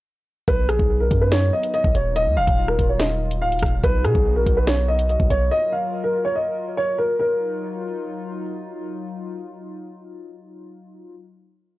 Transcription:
0.48 0.70 B1 loud
0.48 3.80 F#3 medium
0.48 2.14 B3 medium
0.48 3.80 D#4 medium
0.48 0.67 B4 loud
0.48 kick loud
0.48 closed hi-hat medium
0.69 0.79 A#1 loud
0.69 0.98 G#4 medium
0.69 cross-stick medium
0.69 closed hi-hat medium
0.79 1.10 B1 loud
0.79 kick loud
1.00 1.19 A#4 medium
1.11 1.51 F#2 loud
1.11 kick medium
1.11 closed hi-hat medium
1.21 1.31 B4 medium
1.32 1.51 C#5 medium
1.32 snare loud
1.32 closed hi-hat medium
1.53 1.72 D#5 medium
1.63 closed hi-hat medium
1.74 1.93 D#5 medium
1.74 closed hi-hat medium
1.84 1.94 B1 loud
1.84 kick loud
1.95 2.28 D#1 loud
1.95 2.14 C#5 medium
1.95 closed hi-hat medium
2.16 3.82 F4 medium
2.16 2.35 D#5 loud
2.16 closed hi-hat medium
2.26 2.38 D#2 loud
2.37 2.47 D#1 loud
2.37 2.66 F5 loud
2.47 2.77 D#1 loud
2.47 kick loud
2.47 closed hi-hat medium
2.68 2.87 A#4 medium
2.68 cross-stick medium
2.79 3.43 D#1 loud
2.79 kick medium
2.79 closed hi-hat medium
2.89 2.99 C#5 medium
3.00 3.39 D#5 medium
3.00 snare loud
3.00 closed hi-hat medium
3.31 closed hi-hat medium
3.42 3.54 C#1 loud
3.42 3.81 F5 medium
3.52 3.62 D#1 loud
3.52 closed hi-hat soft
3.59 3.83 D#1 loud
3.59 kick medium
3.59 cross-stick loud
3.59 closed hi-hat medium
3.66 closed hi-hat medium
3.84 4.06 B1 loud
3.84 5.50 B3 medium
3.84 5.50 D#4 medium
3.84 5.50 F#4 medium
3.84 4.03 B4 loud
3.84 kick loud
3.84 closed hi-hat medium
4.04 4.14 B2 loud
4.04 4.34 G#4 medium
4.04 cross-stick medium
4.04 closed hi-hat medium
4.15 4.37 B1 loud
4.15 kick loud
4.36 4.46 A#1 loud
4.36 4.55 A#4 medium
4.46 5.17 B1 loud
4.46 kick medium
4.46 closed hi-hat medium
4.57 4.66 B4 medium
4.67 4.86 C#5 medium
4.67 snare loud
4.67 closed hi-hat medium
4.88 5.07 D#5 medium
4.99 closed hi-hat medium
5.09 5.28 D#5 medium
5.09 closed hi-hat medium
5.20 5.30 B1 loud
5.20 kick loud
5.30 5.51 B1 loud
5.30 5.49 C#5 medium
5.30 closed hi-hat medium
5.51 7.17 F#3 medium
5.51 7.18 F4 medium
5.51 7.18 A#4 medium
5.51 5.70 D#5 loud
5.72 6.02 F5 medium
6.04 6.23 A#4 medium
6.25 6.34 C#5 medium
6.35 6.75 D#5 medium
6.77 6.96 C#5 medium
6.98 7.17 A#4 medium
7.19 11.15 F#3 medium
7.19 11.15 D#4 medium
7.19 11.15 F4 medium
7.19 8.41 A#4 medium

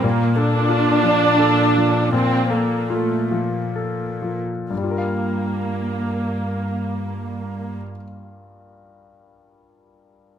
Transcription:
0.02 4.38 A#2 medium
0.02 2.09 A#2 soft
0.02 0.35 A#3 medium
0.35 2.11 D4 medium
0.35 0.89 A4 soft
0.68 1.24 F4 soft
1.03 1.60 F3 soft
1.39 1.98 A4 soft
1.75 2.35 F3 soft
2.12 4.67 A#2 soft
2.12 2.50 C4 medium
2.50 2.90 A#3 medium
2.50 3.14 A4 soft
2.90 3.31 A3 medium
2.90 3.57 F4 soft
3.31 4.02 F3 soft
3.76 4.52 A4 soft
4.22 4.71 F3 soft
4.70 7.76 G2 soft
4.70 7.76 A#3 soft
4.77 7.83 G3 soft
4.84 7.90 F4 soft
4.91 7.97 A#4 soft
4.98 8.04 F5 soft

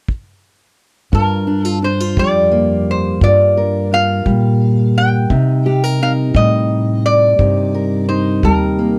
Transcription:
0.08 kick medium
1.12 3.20 G2 medium
1.12 2.14 G2 medium
1.12 1.47 F4 medium
1.12 1.65 A#4 medium
1.12 kick medium
1.47 1.65 D4 medium
1.65 1.82 F4 soft
1.65 1.84 A4 medium
1.82 2.00 D4 medium
1.82 2.19 C5 medium
2.00 3.21 F4 medium
2.17 3.18 F2 medium
2.17 4.25 G3 medium
2.17 2.90 D5 medium
2.17 kick medium
2.52 5.33 A#3 medium
2.91 3.23 C5 medium
3.21 5.30 G2 medium
3.21 4.23 G2 medium
3.21 3.91 F4 medium
3.21 3.94 D5 medium
3.21 kick medium
3.57 5.33 A#4 medium
3.93 5.27 F4 medium
3.93 4.97 F5 loud
4.26 5.27 A#2 medium
4.26 6.34 G3 medium
4.26 kick medium
4.98 5.72 G5 medium
5.30 7.38 C3 medium
5.30 6.32 C3 medium
5.30 6.00 D#4 medium
5.30 kick medium
5.66 5.84 G4 medium
5.72 6.02 F5 medium
5.84 7.73 A#4 medium
6.03 7.38 D#4 medium
6.03 6.12 F5 medium
6.34 7.36 A2 medium
6.34 8.44 G3 medium
6.34 7.05 D#5 medium
6.34 kick medium
7.06 8.08 D5 medium
7.39 8.40 G2 medium
7.39 8.99 C3 medium
7.39 8.08 D#4 medium
7.39 kick medium
7.75 8.99 A#4 medium
8.09 8.99 D#4 medium
8.09 8.44 C5 medium
8.43 8.99 D#2 medium
8.43 8.99 G3 medium
8.43 8.99 A#4 medium
8.43 kick medium
8.79 8.99 A#3 soft

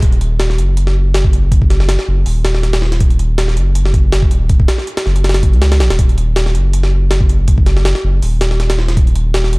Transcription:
0.02 0.60 D#1 loud
0.02 kick loud
0.02 closed hi-hat medium
0.12 closed hi-hat soft
0.21 closed hi-hat medium
0.40 snare loud
0.40 closed hi-hat medium
0.50 snare soft
0.58 1.97 F#1 loud
0.58 closed hi-hat medium
0.77 closed hi-hat medium
0.87 snare soft
1.14 snare loud
1.14 closed hi-hat medium
1.24 kick loud
1.33 closed hi-hat medium
1.52 kick loud
1.52 closed hi-hat medium
1.62 kick loud
1.70 snare soft
1.70 closed hi-hat medium
1.80 snare soft
1.89 snare loud
1.89 closed hi-hat medium
1.99 snare medium
2.08 2.25 F#1 loud
2.26 3.58 D#1 medium
2.26 open hi-hat medium
2.45 snare loud
2.45 closed hi-hat medium
2.55 snare soft
2.63 snare soft
2.63 closed hi-hat medium
2.73 snare loud
2.73 closed hi-hat medium
2.82 snare soft
2.92 snare soft
2.92 closed hi-hat medium
3.00 kick loud
3.00 closed hi-hat medium
3.10 closed hi-hat soft
3.19 closed hi-hat medium
3.38 snare loud
3.38 closed hi-hat medium
3.48 snare soft
3.56 4.30 F#1 loud
3.56 closed hi-hat medium
3.75 closed hi-hat medium
3.85 snare medium
3.94 kick loud
3.94 closed hi-hat medium
4.12 snare loud
4.12 closed hi-hat medium
4.22 kick loud
4.31 4.67 D#1 loud
4.31 closed hi-hat medium
4.49 kick loud
4.49 closed hi-hat medium
4.60 kick loud
4.68 snare loud
4.68 closed hi-hat medium
4.78 snare soft
4.87 closed hi-hat medium
4.97 snare loud
4.97 closed hi-hat medium
5.06 5.54 F#1 loud
5.06 snare soft
5.16 closed hi-hat medium
5.24 snare medium
5.24 closed hi-hat medium
5.29 snare medium
5.29 closed hi-hat medium
5.34 snare loud
5.34 closed hi-hat medium
5.43 kick loud
5.43 closed hi-hat medium
5.53 5.82 C#2 loud
5.53 closed hi-hat soft
5.62 snare loud
5.62 closed hi-hat medium
5.72 snare loud
5.72 closed hi-hat medium
5.80 5.89 A#1 medium
5.80 snare loud
5.80 closed hi-hat medium
5.90 5.98 D#1 medium
5.90 snare loud
5.90 closed hi-hat medium
5.99 6.56 D#1 loud
5.99 kick loud
5.99 closed hi-hat medium
6.09 closed hi-hat soft
6.18 closed hi-hat medium
6.36 snare loud
6.36 closed hi-hat medium
6.46 snare soft
6.55 7.94 F#1 loud
6.55 closed hi-hat medium
6.73 closed hi-hat medium
6.83 snare soft
7.11 snare loud
7.11 closed hi-hat medium
7.21 kick loud
7.29 closed hi-hat medium
7.48 kick loud
7.48 closed hi-hat loud
7.58 kick loud
7.66 snare medium
7.66 closed hi-hat medium
7.77 snare soft
7.85 snare loud
7.85 closed hi-hat medium
7.95 snare soft
8.04 8.21 F#1 loud
8.22 9.54 D#1 medium
8.22 open hi-hat medium
8.41 snare loud
8.41 closed hi-hat medium
8.51 snare soft
8.60 snare soft
8.60 closed hi-hat medium
8.70 snare loud
8.70 closed hi-hat medium
8.79 snare soft
8.88 snare soft
8.88 closed hi-hat medium
8.97 kick loud
8.97 closed hi-hat medium
9.07 closed hi-hat soft
9.16 closed hi-hat medium
9.34 snare loud
9.34 closed hi-hat medium
9.44 snare soft
9.53 9.59 F#1 loud
9.53 closed hi-hat medium

